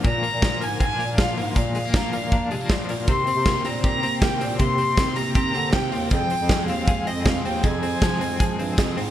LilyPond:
<<
  \new Staff \with { instrumentName = "Violin" } { \time 4/4 \key bes \mixolydian \tempo 4 = 158 bes''4. aes''8 aes''4 f''4 | f''2.~ f''8 r8 | c'''4. bes''8 bes''4 g''4 | c'''4. bes''8 bes''4 g''4 |
g''4. f''4 ees''8 f''8 g''8 | aes''2. r4 | }
  \new Staff \with { instrumentName = "Clean electric guitar" } { \time 4/4 \key bes \mixolydian <bes, f bes d'>8 bes8 f8 bes8 c'16 d'16 bes8 f8 bes8 | bes,8 aes16 bes16 f8 bes8 d'8 aes16 bes16 f8 bes8 | c8 c'8 bes8 c'8 g'8 c'8 bes8 c'8 | c8 c'8 bes8 c'8 g'8 c'8 bes8 c'8 |
f,8 c'8 aes8 c'8 aes'8 c'8 aes8 c'8 | f,8 c'8 aes8 c'8 aes'8 c'8 aes8 c'8 | }
  \new Staff \with { instrumentName = "Steel-string acoustic guitar" } { \time 4/4 \key bes \mixolydian r1 | r1 | <c ees bes c' g'>8 <bes c' g'>8 <c ees bes c' g'>8 <bes c' g'>8 <ees bes c' g'>8 <bes c' g'>8 <c ees bes c' g'>8 <bes c' g'>8 | <c ees bes c' g'>8 <bes g'>8 <c ees bes c' g'>8 <bes c' g'>8 <ees bes c' g'>8 <bes c' g'>8 <c ees bes c' g'>8 <bes c' g'>8 |
<f, c f aes c' aes'>8 <f aes c' aes'>8 <f, c f aes c' aes'>8 <f aes c' aes'>8 <f aes c' aes'>8 <f aes c' aes'>8 <f, c f aes c' aes'>8 <f aes c' aes'>8 | <f, c f aes c' aes'>8 <f aes c' aes'>8 <f, c f aes c' aes'>8 <f aes c' aes'>8 <f aes c' aes'>8 <f aes c' aes'>8 <f, c f aes c' aes'>8 <f aes c' aes'>8 | }
  \new Staff \with { instrumentName = "Bass clarinet" } { \clef bass \time 4/4 \key bes \mixolydian bes,8 r16 bes,8. aes,4 bes,4 aes,8 | bes,4 bes8 bes,8 bes8 c8 bes,8 bes,8 | c8 r16 c8. bes,4 r4 bes,8 | c4 c'8 c8 c'8 d8 c8 ees,8 |
f,8 r16 f,8. ees,4 f,4 ees,8 | f,4 f8 f,8 f8 g,8 f,8 aes,8 | }
  \new DrumStaff \with { instrumentName = "Drums" } \drummode { \time 4/4 <hh bd>8 hho8 <hh bd sn>8 hho8 <hh bd>8 hho8 <hh bd sn>8 hho8 | <hh bd>8 hho8 <hh bd sn>8 hho8 <hh bd>8 hho8 <hh bd sn>8 hho8 | <hh bd>8 hho8 <hh bd sn>8 hho8 <hh bd>8 hho8 <hh bd sn>8 hho8 | <hh bd>8 hho8 <hh bd sn>8 hho8 <hh bd>8 hho8 <hh bd sn>8 hho8 |
<hh bd>8 hho8 <hh bd sn>8 hho8 <hh bd>8 hho8 <hh bd sn>8 hho8 | <hh bd>8 hho8 <hh bd sn>8 hho8 <hh bd>8 hho8 <hh bd sn>8 hho8 | }
>>